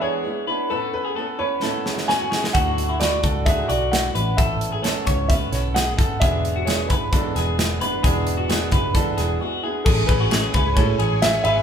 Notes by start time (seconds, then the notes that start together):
Already playing: E2 E3 G#3 B3 D4 E4
0.02 G#4 C#5
0.24 G#3 B3 D4 E4
0.47 G#3 B3 D4 E4 B4
0.70 A2 A3 B3 C#4 E4 A4 B4
0.93 B4
1.05 G#4
1.16 A3 B3 C#4 E4 A4
1.38 B3 C#4 E4 B4 C#5
1.61 A2 A3 B3 C#4 E4 A4, snare
1.85 G#4, snare
1.98 snare
2.08 A3 B3 C#4 E4 F#4 G#5, snare
2.31 B3 C#4 E4 G#4, snare
2.44 snare
2.53 D2 D3 A3 D4 E4 F#4 F#5, kick, closed hi-hat
2.78 closed hi-hat
2.89 E4
2.99 A3 D4 E4 F#4 D5, snare, closed hi-hat
3.22 C#2 D4 E4 F#4 A4, kick, closed hi-hat
3.45 D3 A3 D4 E4 F#4 G#4 E5, kick, closed hi-hat
3.68 B1 F#4 D5, closed hi-hat
3.90 A3 D4 E4 F#4 F#5, snare, closed hi-hat
4.14 A1 B3 C#4 E4 B4, closed hi-hat
4.37 A2 A3 B3 C#4 E4 A4 E5, kick, closed hi-hat
4.61 closed hi-hat
4.72 G#4
4.82 A3 B3 C#4 E4 A4 C#5, snare, closed hi-hat
5.06 C#2 C#5, kick, closed hi-hat
5.28 A2 A3 B3 C#4 E4 B4 E5, kick, closed hi-hat
5.52 B1 A4 C#5, snare, closed hi-hat
5.74 A3 B3 C#4 E4 G#4 F#5, snare, closed hi-hat
5.97 F#1 B3 C#4 E4 A4, kick, closed hi-hat
6.20 E1 E2 E3 G#3 B3 D4 E4 G#4 E5, kick, closed hi-hat
6.45 closed hi-hat
6.56 F#4
6.65 G#3 B3 D4 E4 G#4 C#5, snare, closed hi-hat
6.88 F#1 B3 D4 E4 B4, kick, closed hi-hat
6.92 G#3
7.12 E2 E3 G#3 B3 D4 E4 A4, kick, closed hi-hat
7.36 E1 G#4, snare, closed hi-hat
7.57 G#3 B3 D4 E4, snare, closed hi-hat
7.80 F#1 G#3 B3 D4 E4 B4, closed hi-hat
8.03 E1 E2 E3 G#3 B3 D4 E4 G#4, kick, closed hi-hat
8.27 closed hi-hat
8.37 F#4
8.48 G#3 B3 D4 E4 G#4, snare, closed hi-hat
8.71 F#1 G#3 B3 D4 E4 B4, kick, closed hi-hat
8.95 E2 E3 G#3 B3 D4 E4 A4, kick, closed hi-hat
9.17 E1 G#4, snare, closed hi-hat
9.39 G#3 B3 D4 E4 F#4
9.63 G#3 B3 D4 E4 G#4
9.84 A1 A2 G#3 C#4 E4 G#4 A4 C#5 G#5 C#6, kick, crash
10.07 A1 B4, kick, ride
10.20 F#4
10.30 G#3 C#4 E4 G#4, snare, ride
10.54 C#2 C#4 E4 G#4 B4, kick, ride
10.76 A2 G#3 C#4 E4 G#4 A4 C#5, kick, ride
10.99 A1 G#4, ride
11.22 G#3 C#4 E4 G#4 E5, snare, ride
11.44 G#1 B4 E5, ride